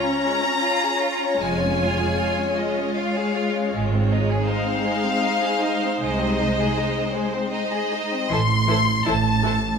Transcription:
0.00 1.36 C#4 soft
0.00 0.24 C#4 soft
0.00 4.42 F4 soft
0.00 4.42 C#5 soft
0.00 1.38 A#5 medium
0.23 0.43 G#3 soft
0.41 0.62 C#4 soft
0.62 0.82 F4 soft
0.81 1.02 G#4 soft
1.01 1.21 F4 soft
1.20 1.41 C#4 soft
1.40 2.07 F1 soft
1.40 2.08 F2 medium
1.40 1.59 G#3 soft
1.40 5.96 G#3 medium
1.40 2.58 G#5 medium
1.61 1.81 C#4 soft
1.80 2.00 F4 soft
2.00 2.20 G#4 soft
2.19 2.39 F4 soft
2.38 2.58 C#4 soft
2.57 2.78 G#3 soft
2.57 2.97 D#5 medium
2.77 2.97 C#4 soft
2.96 3.16 F4 soft
2.96 3.73 F5 soft
3.16 3.36 G#4 soft
3.35 3.54 F4 soft
3.54 3.73 C#4 soft
3.73 4.35 G#1 medium
3.73 4.35 G#2 medium
3.73 3.91 G#3 soft
3.92 4.11 C4 soft
4.10 4.29 D#4 soft
4.29 4.48 G#4 soft
4.45 4.66 D#4 soft
4.45 8.31 D#4 soft
4.45 8.30 C5 soft
4.45 5.95 F5 medium
4.65 4.84 C4 soft
4.83 5.03 G#3 soft
5.02 5.22 C4 soft
5.21 5.41 D#4 soft
5.42 5.61 G#4 soft
5.61 5.80 D#4 soft
5.83 6.01 C4 soft
6.00 6.62 C2 medium
6.00 6.63 C3 medium
6.00 8.27 G#3 medium
6.00 6.18 G#3 soft
6.00 7.13 D#5 medium
6.19 6.37 C4 soft
6.39 6.57 D#4 soft
6.59 6.76 G#4 soft
6.77 6.95 D#4 medium
6.97 7.14 C4 soft
7.14 7.32 G#3 soft
7.14 7.52 C5 medium
7.34 7.52 C4 medium
7.51 7.71 D#4 medium
7.51 8.30 D#5 medium
7.72 7.92 G#4 soft
7.92 8.12 D#4 soft
8.11 8.31 C4 soft
8.30 8.98 A1 medium
8.30 8.99 A2 medium
8.30 8.39 E3 medium
8.30 8.38 E4 medium
8.30 8.40 A4 soft
8.30 8.39 C5 medium
8.30 9.07 C6 medium
8.68 8.76 E3 soft
8.68 8.76 E4 soft
8.68 8.78 A4 soft
8.68 8.79 C5 soft
9.05 9.75 A1 medium
9.05 9.75 A2 medium
9.05 9.14 E3 soft
9.05 9.14 E4 soft
9.05 9.16 A4 medium
9.05 9.16 C5 medium
9.05 9.79 A5 medium
9.44 9.52 E3 soft
9.44 9.52 E4 soft
9.44 9.54 A4 soft
9.44 9.54 C5 medium

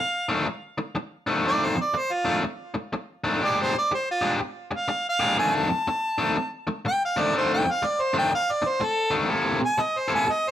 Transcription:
0.00 0.46 F5 loud
0.29 0.45 F2 medium
0.29 0.46 D#3 medium
0.29 0.46 A3 medium
0.29 0.46 D4 medium
0.47 muted overdriven electric guitar stroke soft
0.78 muted overdriven electric guitar stroke medium
0.95 muted overdriven electric guitar stroke soft
1.27 1.43 F2 medium
1.27 1.44 D#3 medium
1.27 1.44 A3 medium
1.27 1.45 D4 medium
1.44 1.76 F2 medium
1.44 1.76 D#3 medium
1.44 1.75 A3 medium
1.44 1.75 D4 medium
1.44 1.66 D5 loud
1.65 1.79 C5 medium
1.76 muted overdriven electric guitar stroke medium
1.82 2.00 D5 medium
1.94 muted overdriven electric guitar stroke soft
1.98 2.14 C5 medium
2.13 2.38 F4 loud
2.25 2.43 F2 medium
2.25 2.43 D#3 medium
2.25 2.43 A3 medium
2.25 2.43 D4 medium
2.44 muted overdriven electric guitar stroke soft
2.74 muted overdriven electric guitar stroke soft
2.93 muted overdriven electric guitar stroke soft
3.24 3.42 F2 medium
3.24 3.42 D#3 medium
3.24 3.42 A3 medium
3.24 3.42 D4 medium
3.42 3.73 A#2 medium
3.42 3.73 G#3 medium
3.42 3.73 D4 medium
3.42 3.73 G4 loud
3.42 3.59 D5 loud
3.62 3.76 C5 loud
3.74 muted overdriven electric guitar stroke medium
3.79 3.92 D5 loud
3.91 4.08 C5 medium
3.91 muted overdriven electric guitar stroke soft
4.11 4.35 F4 loud
4.21 4.39 A#2 medium
4.21 4.38 G#3 medium
4.21 4.39 D4 medium
4.21 4.39 G4 medium
4.40 muted overdriven electric guitar stroke soft
4.71 muted overdriven electric guitar stroke soft
4.76 5.06 F5 medium
4.88 muted overdriven electric guitar stroke soft
5.09 5.39 F5 loud
5.20 5.38 A#2 medium
5.20 5.38 G#3 medium
5.20 5.37 D4 medium
5.20 5.38 G4 medium
5.38 5.69 F2 medium
5.38 5.69 D#3 medium
5.38 5.68 A3 medium
5.38 5.68 D4 loud
5.38 5.55 G#5 loud
5.57 6.51 A5 medium
5.69 muted overdriven electric guitar stroke medium
5.88 muted overdriven electric guitar stroke soft
6.18 6.35 F2 medium
6.18 6.35 D#3 medium
6.18 6.36 A3 medium
6.18 6.36 D4 medium
6.36 muted overdriven electric guitar stroke soft
6.67 muted overdriven electric guitar stroke medium
6.85 7.02 G5 loud
6.85 muted overdriven electric guitar stroke soft
7.05 7.23 F5 medium
7.17 7.32 F2 medium
7.17 7.32 D#3 medium
7.17 7.33 A3 medium
7.17 7.33 D4 medium
7.21 7.35 D5 medium
7.33 7.65 F2 medium
7.33 7.64 D#3 medium
7.33 7.64 A3 loud
7.33 7.64 D4 medium
7.37 7.52 C5 medium
7.54 7.72 G5 medium
7.65 muted overdriven electric guitar stroke medium
7.71 7.87 F5 loud
7.82 8.04 D5 medium
7.82 muted overdriven electric guitar stroke soft
8.02 8.17 C5 medium
8.14 8.30 F2 medium
8.14 8.30 D#3 medium
8.14 8.30 A3 medium
8.14 8.31 D4 medium
8.18 8.33 G5 loud
8.31 8.53 F5 loud
8.31 muted overdriven electric guitar stroke soft
8.52 8.70 D5 loud
8.62 muted overdriven electric guitar stroke medium
8.68 8.86 C5 medium
8.80 muted overdriven electric guitar stroke soft
8.84 9.13 A4 loud
9.11 9.30 F2 medium
9.11 9.29 D#3 medium
9.11 9.29 A3 medium
9.11 9.29 D4 medium
9.29 9.61 C3 medium
9.29 9.60 A#3 medium
9.29 9.60 E4 medium
9.29 9.59 A4 medium
9.61 muted overdriven electric guitar stroke medium
9.66 9.83 G#5 loud
9.78 10.00 D#5 medium
9.78 muted overdriven electric guitar stroke soft
9.99 10.13 C5 medium
10.08 10.25 C3 medium
10.08 10.26 A#3 medium
10.08 10.26 E4 medium
10.08 10.27 A4 loud
10.15 10.33 G#5 loud
10.26 muted overdriven electric guitar stroke soft
10.31 10.50 D#5 loud

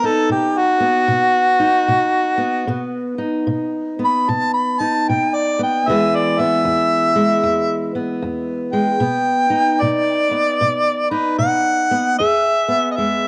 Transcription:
0.00 0.26 B2 medium
0.00 0.80 B3 medium
0.00 1.58 D#4 medium
0.06 0.31 A4 medium
0.30 1.04 B2 medium
0.30 0.60 G4 medium
0.58 2.92 F#4 loud
0.80 2.37 B3 medium
1.08 1.83 B2 medium
1.59 2.65 D#4 medium
1.88 2.63 B2 medium
2.38 2.68 B3 medium
2.67 3.42 B2 medium
2.67 3.98 B3 medium
3.18 4.77 D#4 medium
3.47 4.21 B2 medium
3.99 5.59 B3 medium
4.04 4.31 B5 medium
4.28 5.01 B2 medium
4.28 4.53 A5 medium
4.54 4.82 B5 medium
4.80 5.84 D#4 medium
4.80 5.06 A5 medium
5.08 5.81 B2 medium
5.08 5.37 G5 medium
5.35 5.60 D5 medium
5.59 5.89 B3 medium
5.59 5.90 G5 medium
5.88 6.60 E2 medium
5.88 9.00 E3 medium
5.88 7.15 G#3 medium
5.88 6.39 B3 medium
5.88 9.01 G#4 medium
5.88 6.17 E5 loud
6.16 6.42 D5 medium
6.39 7.95 B3 medium
6.39 7.94 E5 loud
6.65 7.38 E2 medium
7.16 8.72 G#3 medium
7.44 8.17 E2 medium
7.95 8.99 B3 medium
8.23 8.96 E2 medium
8.73 8.99 G#3 medium
8.73 9.82 G5 loud
9.00 9.74 B2 medium
9.00 10.30 B3 medium
9.50 11.09 D#4 medium
9.81 10.55 B2 medium
9.81 11.06 D5 loud
10.31 11.89 B3 medium
10.61 11.34 B2 medium
11.10 12.16 D#4 medium
11.10 11.38 B4 medium
11.38 12.12 B2 medium
11.38 12.14 F#5 loud
11.91 12.16 B3 medium
12.18 12.93 E2 medium
12.18 13.28 G#4 medium
12.18 12.89 E5 loud
12.68 13.28 B3 medium
12.91 12.98 D#5 medium
12.96 13.28 E2 medium
12.96 13.28 G#3 medium
12.96 13.28 E5 medium

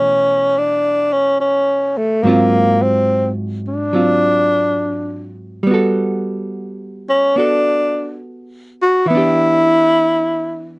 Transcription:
0.00 2.24 B2 medium
0.00 2.24 E3 medium
0.00 2.24 A3 medium
0.00 0.60 C#4 medium
0.58 1.15 D4 medium
1.13 1.40 C#4 medium
1.41 1.99 C#4 medium
1.98 2.25 A3 medium
2.23 5.65 G#2 medium
2.23 3.92 F#3 soft
2.23 2.84 A#3 medium
2.23 3.93 C4 medium
2.29 3.94 F4 medium
2.83 3.30 C4 medium
3.68 5.35 D4 medium
3.93 5.63 F#3 soft
3.93 5.65 C4 soft
3.93 5.66 F4 soft
5.63 9.05 G3 medium
5.63 7.35 B3 soft
5.71 7.37 F#4 soft
5.71 7.38 A4 medium
7.10 7.38 C#4 medium
7.36 9.07 B3 soft
7.36 8.22 D4 medium
7.36 9.08 F#4 soft
7.36 9.09 A4 soft
8.82 9.09 F#4 medium
9.06 10.76 E3 soft
9.06 10.77 E4 loud
9.10 10.79 B3 soft
9.15 10.79 D4 soft
9.15 10.79 G4 medium

